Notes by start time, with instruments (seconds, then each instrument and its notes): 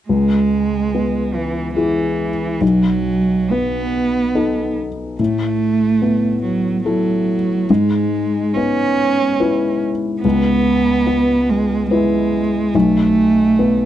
0.09 felt piano C#2, cello G#3
0.95 felt piano B3
1.35 cello E3
1.75 cello E3, felt piano E4 G#4
2.61 felt piano B1, cello F#3
3.51 felt piano B3, cello B3
4.35 felt piano D#4 A4
5.19 felt piano A2, cello A3
6.02 felt piano B3
6.42 cello F#3
6.84 cello F#3, felt piano E4 A4
7.69 felt piano G#2, cello G#3
8.54 felt piano B3, cello C#4
9.40 felt piano E4 B4
10.22 felt piano C#2, cello B3
11.07 felt piano B3
11.49 cello G#3
11.90 cello G#3, felt piano E4 B4
12.75 felt piano B1, cello A3
13.59 felt piano B3